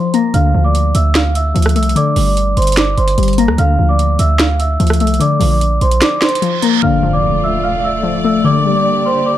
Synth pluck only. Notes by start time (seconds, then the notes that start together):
Already playing: F3
0.14 A#3
0.34 D3
0.54 F3
1.54 F3
1.76 A3
1.96 D3
2.17 G3
3.18 G3
3.38 A#3
3.58 D3
3.79 F3
4.80 F3
5.01 A3
5.20 D3
5.40 F3
6.42 F3
6.63 A#3
6.83 D3
7.03 F3
8.03 F3
8.24 A3
8.44 D3
8.65 G3